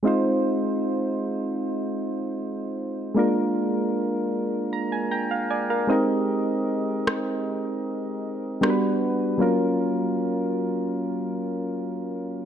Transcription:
<<
  \new Staff \with { instrumentName = "Synth keys" } { \time 4/4 \key f \dorian \tempo 4 = 77 << { r1 | r2 bes''16 aes''16 <g'' bes''>16 f''16 <d'' aes''>16 <bes' f''>16 ees''8 | r1 | r1 | } \\ { <aes c' ees' f' c''>1 | <aes bes d' f' bes'>2.~ <aes bes d' f' bes'>8 <aes c' ees' g' bes'>8~ | <aes c' ees' g' bes'>2. <g b d' fis' bes' b'>4 | <ges bes des' f' bes'>1 | } >> }
  \new DrumStaff \with { instrumentName = "Drums" } \drummode { \time 4/4 r4 r4 r4 r4 | r4 r4 r4 r4 | r4 ss4 r4 ss4 | r4 r4 r4 r4 | }
>>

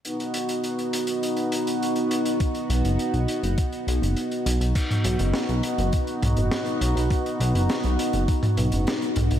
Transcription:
<<
  \new Staff \with { instrumentName = "Analog synth pad" } { \time 4/4 \key b \major \tempo 4 = 102 <b dis' fis'>1~ | <b dis' fis'>1 | <b dis' fis'>1~ | <b dis' fis'>1 | }
  \new Staff \with { instrumentName = "Analog synth bass" } { \clef bass \time 4/4 \key b \major r1 | r8 b,,16 fis,,16 r16 b,,16 r16 fis,,16 r8 b,,16 fis,,16 r8 b,,16 b,,16 | r8 b,,16 fis,,16 r16 b,,16 r16 fis,,16 r8 b,,16 fis,,16 r8 b,,16 b,,16 | r8 b,,16 fis,,16 r16 b,,16 r16 fis,,16 r8 b,,16 fis,,16 r8 b,,16 b,,16 | }
  \new DrumStaff \with { instrumentName = "Drums" } \drummode { \time 4/4 hh16 hh16 hh16 hh16 hh16 hh16 hh16 hh16 hh16 hh16 hh16 hh16 hh16 hh16 hh16 hh16 | <hh bd>16 hh16 hh16 hh16 hh16 hh16 hh16 hh16 <hh bd>16 hh16 hh16 hh16 hh16 hh16 hh16 hh16 | <cymc hh bd>16 <hh toml>16 hh16 hh16 <hh sn>16 hh16 hh16 hh16 <hh bd>16 hh16 <hh toml>16 hh16 <hh sn>16 hh16 hh16 hh16 | <hh bd>16 hh16 hh16 hh16 <hh sn>16 hh16 hh16 hh16 <hh bd>16 <hh toml>16 hh16 hh16 <hh sn>16 hh16 <hh toml>16 hh16 | }
>>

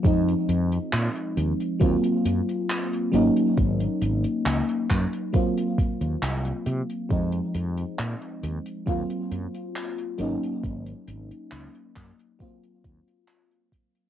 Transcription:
<<
  \new Staff \with { instrumentName = "FM electric piano" } { \time 4/4 \key ees \dorian \tempo 4 = 68 <f aes c' ees'>2 <ges bes c' f'>4. <ges bes des' ees'>8~ | <ges bes des' ees'>2 <ges bes c' f'>2 | <f aes c' ees'>2 <ges bes c' f'>4. <ges bes des' ees'>8~ | <ges bes des' ees'>2 <ges bes c' f'>2 | }
  \new Staff \with { instrumentName = "Fretless electric bass" } { \clef bass \time 4/4 \key ees \dorian f,16 r16 f,16 r16 bes,16 r16 ees,16 r16 ees,16 r16 ges,16 r8. aes,,16 r16 | aes,,16 r16 aes,,16 r16 des,16 r16 ges,16 r4 ees,16 c,16 r16 c16 r16 | f,16 r16 f,16 r16 bes,16 r16 ees,16 r16 ees,16 r16 ges,16 r8. aes,,16 r16 | aes,,16 r16 aes,,16 r16 des,16 r16 ges,16 r8. ees,16 r4 r16 | }
  \new DrumStaff \with { instrumentName = "Drums" } \drummode { \time 4/4 <hh bd>16 hh16 hh16 hh16 <hc hh>16 hh16 hh16 hh16 <hh bd>16 hh16 hh16 hh16 <hc hh>16 hh16 hh16 hh16 | <hh bd>16 hh16 hh16 hh16 <hc hh>16 hh16 <hc hh bd>16 hh16 <hh bd>16 hh16 <hh bd>16 hh16 <hc hh>16 hh16 hh16 hh16 | <hh bd>16 hh16 hh16 hh16 <hc hh>16 hh16 hh16 hh16 <hh bd>16 hh16 hh16 hh16 <hc hh>16 hh16 hh16 hh16 | <hh bd>16 hh16 hh16 hh16 <hc hh>16 hh16 <hc hh bd>16 hh16 <hh bd>16 hh16 <hh bd>16 hh16 <hc hh>16 hh16 <hh bd>16 hh16 | }
>>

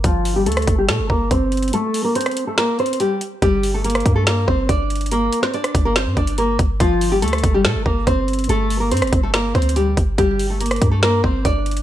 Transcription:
<<
  \new Staff \with { instrumentName = "Nylon-string guitar" } { \time 4/4 \key g \minor \tempo 4 = 142 <f f'>8. <g g'>16 <a a'>8. <g g'>16 <a a'>8 <bes bes'>8 <c' c''>4 | <a a'>8. <bes bes'>16 <c' c''>8. <a a'>16 <bes bes'>8 <c' c''>8 <g g'>8 r8 | <g g'>8. <a a'>16 <bes bes'>8. <a a'>16 <bes bes'>8 <c' c''>8 <d' d''>4 | <bes bes'>8. <c' c''>16 <d' d''>8. <bes bes'>16 <c' c''>8 <d' d''>8 <bes bes'>8 r8 |
<f f'>8. <g g'>16 <a a'>8. <g g'>16 <a a'>8 <bes bes'>8 <c' c''>4 | <a a'>8. <bes bes'>16 <c' c''>8. <a a'>16 <bes bes'>8 <c' c''>8 <g g'>8 r8 | <g g'>8. <a a'>16 <bes bes'>8. <a a'>16 <bes bes'>8 <c' c''>8 <d' d''>4 | }
  \new Staff \with { instrumentName = "808-style bass" } { \clef bass \time 4/4 \key g \minor g,,4 d,8 g,,8 bes,16 g,,16 g,,8 g,,4 | r1 | g,,4. g,4 g,,8 g,,4~ | g,,8 r4 g,,8. g,16 g,,4 g,,8 |
g,,4 d,8 g,,8 bes,16 g,,16 g,,8 g,,4 | g,,4 g,16 g,,16 g,,4 d,4 g,,8 | g,,4. g,4 g,,8 g,,4 | }
  \new DrumStaff \with { instrumentName = "Drums" } \drummode { \time 4/4 <hh bd>8 hho8 hh32 hh32 <hh ss>32 hh32 <hh bd>8 <hh sn>8 bd8 <hh bd>8 hh32 hh32 hh32 hh32 | hh8 hho8 hh32 hh32 <hh ss>32 hh32 hh8 \tuplet 3/2 { <hh ss sn>16 r16 r16 hh16 hh16 hh16 } hh8 hh8 | <hh bd>8 hho8 hh32 hh32 <hh ss>32 hh32 <hh bd>8 <hh sn>8 bd8 <hh bd>8 hh32 hh32 hh32 hh32 | hh8 hh16 sn16 hh16 <hh ss>16 <hh bd>8 <hh sn>8 <hh bd>16 hh16 hh8 <hh bd>8 |
<hh bd>8 hho8 hh32 hh32 <hh ss>32 hh32 <hh bd>8 <hh sn>8 bd8 <hh bd>8 hh32 hh32 hh32 hh32 | hh8 hho8 hh32 hh32 <hh ss>32 hh32 <hh bd>8 \tuplet 3/2 { <hh ss sn>16 r16 r16 <hh bd>16 hh16 hh16 } hh8 <hh bd>8 | <hh bd>8 hho8 hh32 hh32 <hh ss>32 hh32 <hh bd>8 <hh sn>8 bd8 <hh bd>8 hh32 hh32 hh16 | }
>>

